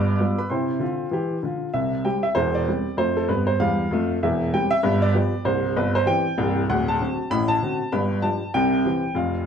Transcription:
upright piano
Already playing: G1 G2 D5 B5 D6
0.20 G3 B3 F4
0.39 B4 B5
0.50 C3 E4 C5 G5 C6
0.80 D3 F4
1.11 E3 G4
1.43 D3 F4
1.74 C2 C3 E5
2.05 G3 C4 G4 G5
2.23 E5
2.35 E1 E2 C5
2.55 D5
2.68 G3 C4 G4
2.97 F2 A3 C5
3.17 A4
3.28 G2 B3 B4
3.47 C5
3.60 E2 G3 F5
3.91 F2 A3
4.23 E1 E2 E5
4.53 G3 C4 G4 G5
4.71 E5
4.83 G1 G2
5.02 D5
5.14 F3 B3 G4
5.45 C1 C2 C5
5.76 G1 B4
5.95 C5
6.06 E3 C4 G4 G5
6.38 C1 C2
6.69 D1 D2 F#5
6.88 A5
7.01 D3 C4 F#4
7.30 A1 A2 B5
7.48 A5
7.63 D3 C4 F#4
7.92 G1 G2 B5
8.22 F3 D4 G4 A5
8.54 C2 C3 G5
8.85 E3 C4 G4
9.15 F1 F2 F5

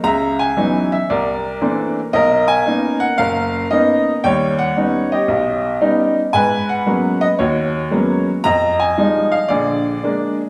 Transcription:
upright piano
0.04 C#2 C#3 E5 A#5
0.39 G#5
0.57 E3 F#3 B3 C#4 D#4
0.92 E5
1.10 C2 A#4 D5
1.61 E3 A3 A#3 C4 D4
2.13 B1 A#4 D#5
2.48 G#5
2.66 A#3 B3 C#4 D#4
3.00 F#5
3.18 F#1 A#4 F5
3.71 A#3 B3 C#4 D#4 D#5
4.24 D#2 G3 C#5 G5
4.59 F#5
4.76 G3 B3 C#4 D#4
5.12 G4 D#5
5.28 B1
5.81 G3 B3 C#4 D#4
6.33 G#2 B4 G#5
6.69 F#5
6.86 F#3 G#3 A#3 B3 C#4
7.21 D#5
7.39 D#2 F#4 C#5
7.91 F#3 G#3 A#3 B3 C#4
8.44 F2 D#5 A#5
8.80 G#5
8.98 F3 G3 G#3 D#4
9.32 F5
9.48 A#1 D3 G#4 D5
10.04 G#3 A#3 D4

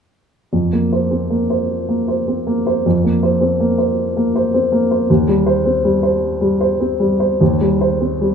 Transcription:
upright piano
0.53 F2
0.73 A#3
0.93 C5
1.11 C4
1.30 A#3
1.50 C5
1.89 A#3
2.08 C5
2.28 C4
2.47 A#3
2.67 C5
2.86 F2
3.04 A#3
3.23 C5
3.41 C4
3.60 A#3
3.78 C5
4.17 A#3
4.36 C5
4.54 C4
4.72 A#3
4.91 C5
5.10 D#2
5.28 G3
5.46 C5
5.66 C4
5.84 G3
6.03 C5
6.41 G3
6.61 C5
6.80 C4
7.00 G3
7.20 C5
7.41 D#2
7.61 G3
7.81 C5
8.01 C4
8.21 G3

